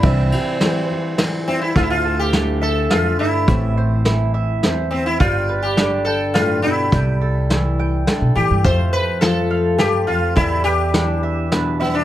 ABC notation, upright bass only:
X:1
M:3/4
L:1/16
Q:1/4=104
K:Ddor
V:1 name="Upright bass" clef=bass
C,,2 z8 z2 | D,,8 z4 | A,,,8 z4 | G,,,8 z4 |
C,,8 z B,, A,, G,, | F,,8 z4 | E,,8 z4 |]